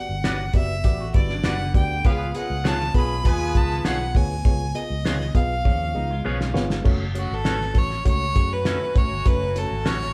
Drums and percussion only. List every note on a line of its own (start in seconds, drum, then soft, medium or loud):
0.24 snare loud
0.24 closed hi-hat medium
0.53 kick medium
0.53 closed hi-hat medium
0.84 kick medium
0.84 closed hi-hat loud
1.14 kick loud
1.14 closed hi-hat medium
1.29 snare soft
1.44 snare loud
1.44 closed hi-hat medium
1.74 kick medium
1.74 closed hi-hat medium
2.05 kick loud
2.05 closed hi-hat medium
2.35 closed hi-hat medium
2.65 snare loud
2.65 closed hi-hat medium
2.81 snare soft
2.94 kick medium
2.94 closed hi-hat medium
3.25 kick medium
3.25 closed hi-hat loud
3.55 kick loud
3.55 closed hi-hat medium
3.71 snare soft
3.85 snare loud
3.85 closed hi-hat medium
4.15 kick loud
4.15 open hi-hat medium
4.45 kick loud
4.45 closed hi-hat medium
4.75 closed hi-hat medium
5.06 snare loud
5.06 closed hi-hat medium
5.21 snare soft
5.35 kick medium
5.35 closed hi-hat medium
5.65 kick medium
6.41 snare medium
6.56 snare loud
6.70 snare medium
6.85 kick loud
6.85 crash medium
7.15 closed hi-hat medium
7.45 snare loud
7.45 closed hi-hat medium
7.61 snare soft
7.75 kick medium
7.75 closed hi-hat medium
7.90 snare soft
8.05 kick medium
8.05 closed hi-hat loud
8.36 kick medium
8.36 closed hi-hat medium
8.65 snare loud
8.65 closed hi-hat medium
8.96 kick loud
8.96 closed hi-hat medium
9.26 kick loud
9.26 closed hi-hat medium
9.56 closed hi-hat medium
9.86 snare loud
9.86 closed hi-hat medium
10.01 snare soft